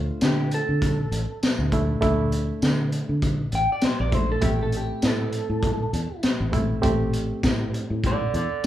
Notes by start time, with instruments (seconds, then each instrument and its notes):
Already playing: reed electric piano A3 D4 F4, clean electric guitar C5
0.21 fingered electric bass D3, clean electric guitar G4, snare, closed hi-hat, tambourine
0.51 clean electric guitar A4, closed hi-hat
0.69 fingered electric bass D3
0.82 kick, closed hi-hat
1.12 fingered electric bass A1, closed hi-hat
1.43 muted fingered electric bass stroke, snare, closed hi-hat, tambourine
1.59 fingered electric bass D2
1.72 reed electric piano A3 D4 E4, kick, closed hi-hat
2.01 fingered electric bass D2, reed electric piano A3 D4 E4, kick, closed hi-hat
2.32 closed hi-hat
2.62 fingered electric bass D3, snare, closed hi-hat, tambourine
2.92 closed hi-hat
3.09 fingered electric bass D3
3.22 kick, closed hi-hat
3.52 fingered electric bass A1, clean electric guitar G5, closed hi-hat
3.72 clean electric guitar D5
3.82 clean electric guitar C5, muted fingered electric bass stroke, snare, closed hi-hat, tambourine
4.00 fingered electric bass A#1, clean electric guitar D5
4.12 reed electric piano A3 D4 E4, clean electric guitar C5, kick, closed hi-hat
4.32 clean electric guitar A4
4.41 fingered electric bass A1, reed electric piano A3 C4 E4, clean electric guitar G4, kick, closed hi-hat
4.63 clean electric guitar A4
4.72 closed hi-hat
4.77 clean electric guitar G4
5.02 fingered electric bass A2, snare, closed hi-hat, tambourine
5.06 clean electric guitar A4
5.32 closed hi-hat
5.50 fingered electric bass A2
5.63 kick, closed hi-hat
5.93 fingered electric bass E2, closed hi-hat
6.23 muted fingered electric bass stroke, snare, closed hi-hat, tambourine
6.40 fingered electric bass A1
6.52 reed electric piano A3 C4 E4, kick, closed hi-hat
6.82 fingered electric bass A1, reed electric piano A3 C4 G4, kick, closed hi-hat
7.13 closed hi-hat
7.43 fingered electric bass A2, kick, snare, closed hi-hat, tambourine
7.74 closed hi-hat
7.90 fingered electric bass A2
8.04 clean electric guitar A4 D5, kick, closed hi-hat
8.34 fingered electric bass E2, clean electric guitar A4 D5, closed hi-hat